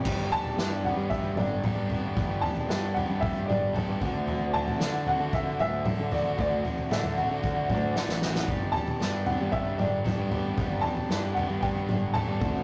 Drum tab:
CC |x---------------|----------------|----------------|----------------|
SD |----o-----------|----o-----------|----o-----------|----o-------oooo|
T2 |----------o-o---|----------o-o---|----------o-o---|----o-----o-----|
FT |o-oo--o-o---o-o-|o-oo--o-o---o-o-|o-oo--o-o---o-o-|o-oo-oo-o-o-----|
BD |o-------o-------|o-------o-----o-|--------o-------|o-------o-o-----|

CC |----------------|----------------|
SD |----o-----------|----o-----------|
T2 |----------o-o---|----------o-o---|
FT |o-oo--o-o---o-o-|o-oo--o-o---o-o-|
BD |o-------o-------|o-------o-----o-|